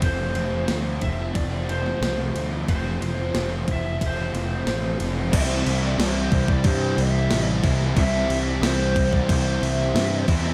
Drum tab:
CC |----------------|----------------|x-x-x-x-x-x-x-x-|x-x-x-x-x-x-x-x-|
RD |x-x-x-x-x-x-x-x-|x-x-x-x-x-x-x-x-|----------------|----------------|
SD |----o------oo---|----o-------o---|----o-------o--o|----o-------o--o|
BD |o-----o-o-------|o-----o-o-------|o-----ooo-----o-|o-----ooo-----o-|